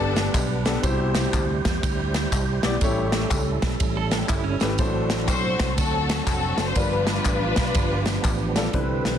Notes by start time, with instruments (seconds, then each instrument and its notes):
Already playing: fingered electric bass G1, grand piano G2 B3 D4 G4 D5, tonewheel organ G3 B3 D4 B4, string section D4 A4
0.16 snare, ride, tambourine
0.34 fingered electric bass B1, kick, clap, ride, tambourine
0.65 grand piano B3 D4 G4 A4, snare, ride, tambourine
0.83 fingered electric bass C2, grand piano B2 C3 E4 G4 C5, tonewheel organ G3 E4 G4 C5, kick, ride, tambourine
1.15 snare, ride, tambourine
1.33 fingered electric bass D2, kick, clap, ride, tambourine
1.65 fingered electric bass E2, kick, snare, ride, tambourine
1.83 fingered electric bass D2, kick, ride, tambourine
2.14 snare, ride, tambourine
2.32 fingered electric bass C2, kick, clap, ride, tambourine
2.63 fingered electric bass B1, grand piano B3 E4 G4 D5, snare, ride, tambourine
2.81 fingered electric bass A1, grand piano A2 A3 E4 G4 C#5, tonewheel organ G3 C#4 E4 A4, kick, ride, tambourine
3.12 snare, ride, tambourine
3.31 fingered electric bass C#2, kick, clap, ride, tambourine
3.62 fingered electric bass B1, kick, snare, ride, tambourine
3.80 fingered electric bass A1, kick, ride, tambourine
3.97 clean electric guitar A4
4.11 snare, ride, tambourine
4.18 clean electric guitar G4
4.29 fingered electric bass G1, clean electric guitar E4, kick, clap, ride, tambourine
4.44 clean electric guitar C#4
4.60 fingered electric bass G#1, grand piano A3 E4 G4 B4, snare, ride, tambourine
4.78 fingered electric bass A1, grand piano A2 A3 D4 E4 C5, tonewheel organ F#3 C4 D4 A4, kick, ride, tambourine
4.85 grand piano F#4
5.10 snare, ride, tambourine
5.28 fingered electric bass B1, string section F#4 C5, kick, clap, ride, tambourine
5.60 fingered electric bass C2, kick, snare, ride, tambourine
5.78 fingered electric bass D2, string section C4 F#4 A4, kick, ride, tambourine
6.09 snare, ride, tambourine
6.26 fingered electric bass F1, string section C4 F#4 A4, kick, clap, ride, tambourine
6.57 fingered electric bass F#1, grand piano A3 D4 F#4 C5, snare, ride, tambourine
6.68 string section C5
6.75 fingered electric bass G1, grand piano G2 G3 D4 F4 A#4, tonewheel organ F3 B3 D4 G4, string section D4 F4 B4, kick, ride, tambourine
6.82 grand piano B4
7.07 snare, ride, tambourine
7.25 fingered electric bass A1, kick, clap, ride, tambourine
7.56 fingered electric bass B1, kick, snare, ride, tambourine
7.75 fingered electric bass G1, kick, ride, tambourine
8.06 snare, ride, tambourine
8.24 fingered electric bass A1, kick, clap, ride, tambourine
8.56 grand piano G3 D4 F4 A4, snare, ride, tambourine
8.73 fingered electric bass C2, grand piano C3 G3 C4 E4 B4, tonewheel organ D3 E3 B4, kick, closed hi-hat
9.05 fingered electric bass B1, snare, closed hi-hat